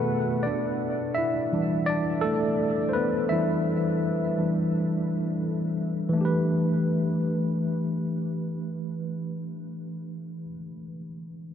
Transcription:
0.00 0.46 B2 medium
0.00 0.47 D#3 medium
0.00 0.47 A3 medium
0.00 0.42 B3 medium
0.00 0.46 F#4 medium
0.00 0.47 G#4 medium
0.00 0.46 A4 loud
0.00 0.46 B4 loud
0.00 0.46 F#5 loud
0.43 1.13 D4 medium
0.43 1.11 D5 medium
1.15 1.84 E4 medium
1.15 1.89 E5 loud
1.52 2.02 E3 medium
1.52 2.03 G3 medium
1.52 1.89 D4 medium
1.86 2.22 D4 medium
1.86 2.24 D5 loud
2.21 2.86 A3 medium
2.21 2.90 A4 loud
2.89 2.94 C5 medium
2.93 3.12 B3 medium
2.93 3.10 B4 medium
3.29 4.37 E3 medium
3.29 4.37 G3 medium
3.29 4.38 D4 medium
3.29 5.41 E4 medium
3.29 5.40 E5 medium
4.38 4.70 E3 soft
4.38 4.70 G3 soft
4.38 4.70 D4 medium
6.09 10.44 E3 medium
6.09 10.46 A3 medium
6.17 10.48 D4 medium
6.17 10.50 G4 medium
6.25 10.52 B4 medium

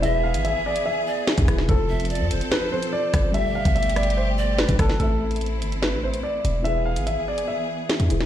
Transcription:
0.00 0.36 E1 loud
0.00 1.44 E3 medium
0.00 1.67 E3 medium
0.00 1.67 B3 medium
0.00 1.45 E4 medium
0.00 1.67 G#4 loud
0.00 1.46 G#4 medium
0.00 0.16 D#5 loud
0.00 0.19 E5 loud
0.00 closed hi-hat medium
0.06 1.46 B4 medium
0.16 1.03 E5 loud
0.24 0.40 F5 medium
0.34 0.54 G#1 loud
0.34 closed hi-hat medium
0.45 0.61 E5 medium
0.45 closed hi-hat medium
0.66 0.82 D5 medium
0.76 closed hi-hat medium
0.86 1.65 E5 medium
1.07 1.26 D5 medium
1.27 snare loud
1.38 1.48 E2 loud
1.38 kick loud
1.38 closed hi-hat medium
1.47 1.68 E1 loud
1.47 1.68 E3 medium
1.47 1.68 E4 medium
1.47 1.69 G#4 medium
1.47 1.69 B4 medium
1.47 kick loud
1.47 cross-stick loud
1.47 closed hi-hat loud
1.58 snare medium
1.66 2.22 F1 loud
1.66 2.69 F3 medium
1.66 3.33 F3 medium
1.66 3.33 C4 medium
1.66 2.70 F4 medium
1.66 3.33 A4 loud
1.66 2.48 A4 medium
1.66 2.71 A4 medium
1.66 kick loud
1.66 closed hi-hat medium
1.71 2.71 C5 medium
1.89 2.09 E5 medium
2.00 closed hi-hat medium
2.05 closed hi-hat medium
2.10 2.30 D5 medium
2.10 closed hi-hat medium
2.15 closed hi-hat medium
2.20 2.32 F2 loud
2.31 2.41 F1 loud
2.31 3.30 C5 medium
2.31 closed hi-hat medium
2.41 closed hi-hat medium
2.52 2.68 B4 loud
2.52 snare loud
2.70 3.33 F3 soft
2.70 3.34 F4 soft
2.70 3.34 A4 soft
2.70 2.89 C5 loud
2.70 3.35 C5 medium
2.83 closed hi-hat medium
2.93 3.32 D5 loud
3.14 3.43 G1 loud
3.14 kick loud
3.14 cross-stick loud
3.14 closed hi-hat loud
3.32 4.98 B2 medium
3.32 4.95 G3 medium
3.32 4.98 A3 medium
3.32 4.96 G4 medium
3.32 4.98 G4 loud
3.32 4.97 A4 medium
3.32 3.51 E5 medium
3.32 4.34 E5 loud
3.32 closed hi-hat medium
3.37 4.98 D5 medium
3.55 3.72 F5 medium
3.65 4.65 G1 loud
3.65 kick loud
3.65 closed hi-hat medium
3.75 3.92 E5 medium
3.75 closed hi-hat medium
3.83 closed hi-hat medium
3.90 closed hi-hat medium
3.96 4.13 D5 medium
3.96 cross-stick medium
3.96 closed hi-hat medium
4.03 closed hi-hat medium
4.10 closed hi-hat medium
4.17 4.56 C5 medium
4.38 4.77 D5 medium
4.58 4.75 B4 medium
4.58 snare loud
4.69 4.79 B1 loud
4.69 kick loud
4.69 closed hi-hat medium
4.79 4.99 G1 loud
4.79 4.96 A4 medium
4.79 4.99 B4 medium
4.79 kick loud
4.79 cross-stick loud
4.79 closed hi-hat loud
4.89 snare medium
4.98 5.63 A1 loud
4.98 6.61 A3 medium
4.98 6.64 A3 medium
4.98 6.64 C4 medium
4.98 6.64 E4 medium
4.98 6.62 A4 medium
4.98 5.78 A4 medium
4.98 6.63 C5 medium
4.98 closed hi-hat medium
5.03 6.63 E5 medium
5.31 closed hi-hat medium
5.36 closed hi-hat medium
5.41 closed hi-hat medium
5.46 closed hi-hat medium
5.62 5.94 G1 loud
5.62 closed hi-hat medium
5.72 closed hi-hat medium
5.82 5.99 B4 medium
5.82 snare loud
5.93 6.22 A1 medium
6.04 6.20 C5 medium
6.14 closed hi-hat medium
6.23 6.63 D5 medium
6.45 6.98 E1 loud
6.45 closed hi-hat medium
6.63 8.06 E3 medium
6.63 8.26 E3 medium
6.63 8.26 B3 medium
6.63 8.07 E4 medium
6.63 8.26 G#4 medium
6.63 8.08 G#4 medium
6.63 6.81 E5 medium
6.63 closed hi-hat medium
6.68 8.08 B4 medium
6.85 7.02 F5 medium
6.96 7.16 G#1 loud
6.96 closed hi-hat medium
7.07 7.23 E5 medium
7.07 closed hi-hat medium
7.28 7.44 D5 medium
7.38 closed hi-hat medium
7.48 8.26 E5 medium
7.89 snare loud
8.00 8.10 E2 loud
8.00 closed hi-hat medium
8.09 8.26 E1 loud
8.09 8.26 E3 medium
8.09 8.26 E4 medium
8.09 8.26 G#4 medium
8.09 8.26 B4 medium
8.09 closed hi-hat medium
8.21 snare medium

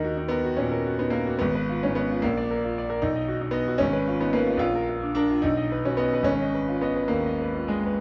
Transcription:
0.00 1.36 D#2 medium
0.00 0.16 D#4 medium
0.00 0.12 A#4 soft
0.04 0.26 F#4 soft
0.18 0.40 D#4 soft
0.28 0.58 B3 medium
0.28 0.53 A#4 soft
0.45 0.67 F#4 soft
0.57 0.81 A#2 soft
0.57 1.00 C#4 medium
0.72 0.95 A#4 soft
0.86 1.09 F#4 soft
0.99 1.14 B3 medium
0.99 1.23 D#4 soft
1.10 1.40 A#3 medium
1.10 1.36 A#4 medium
1.27 1.41 F#4 medium
1.39 2.20 G#1 medium
1.39 1.81 B3 medium
1.55 1.77 B4 medium
1.69 1.91 F4 soft
1.83 2.05 G#2 soft
1.83 1.96 C#4 medium
1.95 2.23 B3 medium
1.95 2.18 B4 medium
2.11 2.24 F4 soft
2.22 3.01 A#1 medium
2.22 2.49 A#3 medium
2.37 2.58 D5 medium
2.51 2.71 A#4 soft
2.65 2.85 F4 soft
2.78 2.98 D5 soft
2.90 3.03 A#4 medium
3.02 3.79 B1 medium
3.02 3.40 D#4 medium
3.16 3.37 D#5 soft
3.28 3.50 F#4 soft
3.41 3.63 D#4 soft
3.51 3.79 B3 medium
3.51 3.75 D#5 medium
3.68 3.81 F#4 medium
3.78 4.58 G#1 medium
3.78 4.19 C#4 loud
3.93 4.15 B4 medium
4.08 4.29 F4 soft
4.20 4.34 B3 medium
4.20 4.42 D#4 soft
4.33 4.60 A#3 medium
4.33 4.56 B4 medium
4.47 4.58 F4 medium
4.57 5.38 A#1 medium
4.57 4.88 F4 loud
4.75 4.96 A#4 soft
4.89 5.10 F4 soft
5.02 5.13 D4 soft
5.15 5.43 D4 medium
5.15 5.38 A#4 medium
5.30 5.43 F4 medium
5.42 6.24 B1 medium
5.42 5.84 D#4 medium
5.57 5.79 D#5 soft
5.72 5.93 B4 soft
5.85 5.99 C#4 medium
5.85 6.07 F#4 soft
5.97 6.25 B3 medium
5.97 6.21 D#5 medium
6.14 6.27 B4 medium
6.23 7.96 G#1 medium
6.23 6.81 C#4 loud
6.41 6.63 D#5 soft
6.55 6.76 B4 soft
6.69 6.91 F4 soft
6.81 7.10 B3 medium
6.81 7.05 D#5 medium
6.96 7.19 B4 soft
7.08 7.34 D#2 soft
7.08 7.69 A#3 medium
7.26 7.49 D#5 soft
7.42 7.65 B4 soft
7.55 7.80 F4 soft
7.68 8.01 G#3 medium
7.68 7.95 D#5 soft
7.86 8.01 B4 soft

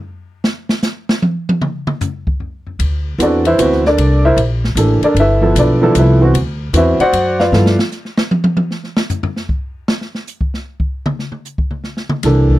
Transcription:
0.44 snare medium
0.69 snare medium
0.82 snare medium
0.82 hi-hat pedal soft
1.09 snare medium
1.22 high tom medium
1.49 high tom medium
1.61 mid tom medium
1.87 mid tom medium
2.01 floor tom medium
2.01 hi-hat pedal soft
2.27 kick medium
2.40 floor tom soft
2.67 floor tom soft
2.79 3.18 D2 medium
2.79 ride medium
3.18 3.57 E2 medium
3.18 3.42 E3 medium
3.18 3.42 B3 medium
3.18 3.43 C4 medium
3.18 3.43 F#4 medium
3.18 3.46 D5 medium
3.18 hi-hat pedal medium
3.18 ride medium
3.23 3.46 D4 medium
3.23 3.46 A4 medium
3.23 3.45 B4 medium
3.45 3.83 E4 medium
3.45 3.83 B4 medium
3.45 3.83 C5 medium
3.45 3.83 E5 medium
3.45 ride soft
3.58 3.97 D2 medium
3.58 3.82 E3 medium
3.58 3.82 B3 medium
3.58 3.82 C4 medium
3.58 3.82 F#4 medium
3.58 hi-hat pedal soft
3.58 ride medium
3.72 snare soft
3.85 4.23 D4 medium
3.85 4.22 A4 medium
3.85 4.23 A#4 medium
3.85 4.22 D5 medium
3.85 snare soft
3.98 4.36 C2 medium
3.98 ride medium
4.25 4.38 E4 medium
4.25 4.38 A#4 medium
4.25 4.38 C5 medium
4.25 4.38 E5 medium
4.36 4.75 A#1 medium
4.36 ride medium
4.64 snare soft
4.75 5.00 A1 medium
4.75 5.00 E3 medium
4.75 5.00 A#3 medium
4.75 5.00 D4 medium
4.75 5.01 A4 medium
4.75 hi-hat pedal medium
4.75 ride medium
5.02 5.17 D4 medium
5.02 5.17 A4 medium
5.02 5.17 A#4 medium
5.02 5.17 D5 medium
5.02 muted upright bass stroke soft
5.02 ride soft
5.15 5.54 G1 medium
5.15 ride medium
5.20 5.41 E4 medium
5.20 5.41 A4 medium
5.20 5.55 B4 medium
5.20 5.55 E5 medium
5.41 5.78 F3 medium
5.41 5.79 B3 medium
5.41 5.79 E4 medium
5.41 5.58 A4 medium
5.55 5.94 B1 medium
5.55 5.94 D5 medium
5.55 hi-hat pedal soft
5.55 ride medium
5.59 5.94 D4 medium
5.59 5.82 A4 medium
5.59 5.94 B4 medium
5.82 6.18 F3 medium
5.82 6.18 B3 medium
5.82 5.98 E4 medium
5.82 5.98 A4 medium
5.95 6.33 C2 medium
5.95 6.22 E5 medium
5.95 hi-hat pedal medium
5.95 ride medium
5.99 6.22 E4 medium
5.99 6.22 A4 medium
5.99 6.22 B4 medium
6.21 6.33 E3 medium
6.21 6.33 B3 medium
6.21 6.33 C4 medium
6.21 6.34 F#4 medium
6.34 6.72 D2 medium
6.34 ride medium
6.73 6.97 E2 medium
6.73 6.97 E3 medium
6.73 6.97 B3 medium
6.73 6.97 C4 medium
6.73 6.97 F#4 medium
6.73 7.00 E5 medium
6.73 hi-hat pedal medium
6.73 ride medium
6.77 7.01 E4 medium
6.77 7.00 B4 medium
6.77 7.00 C5 medium
6.99 7.37 F#4 medium
6.99 7.37 C5 medium
6.99 7.37 D5 medium
6.99 7.37 F#5 loud
6.99 muted upright bass stroke soft
6.99 ride soft
7.13 7.51 F#2 medium
7.13 ride medium
7.40 7.76 F4 medium
7.40 7.76 B4 medium
7.40 7.76 D5 medium
7.40 7.76 F5 medium
7.40 snare medium
7.52 7.76 G2 medium
7.52 7.75 F3 medium
7.52 7.76 B3 soft
7.52 7.76 E4 soft
7.52 7.76 A4 medium
7.52 snare medium
7.66 snare medium
7.79 snare medium
7.92 snare soft
7.92 hi-hat pedal soft
8.05 snare soft
8.18 snare medium
8.31 high tom medium
8.44 high tom medium
8.57 high tom medium
8.71 snare soft
8.84 snare soft
8.97 snare medium
9.10 floor tom medium
9.10 hi-hat pedal medium
9.23 floor tom medium
9.36 snare medium
9.49 kick medium
9.88 snare medium
10.01 snare soft
10.15 snare soft
10.27 hi-hat pedal medium
10.41 kick medium
10.54 snare soft
10.80 kick medium
11.06 mid tom medium
11.19 snare soft
11.32 mid tom medium
11.45 hi-hat pedal soft
11.58 kick medium
11.71 mid tom soft
11.84 snare soft
11.97 snare soft
12.09 mid tom medium
12.23 12.59 C2 medium
12.23 12.59 E3 medium
12.23 12.59 A#3 medium
12.23 12.59 D4 medium
12.23 12.59 A4 medium
12.23 snare soft
12.23 ride medium
12.50 kick medium

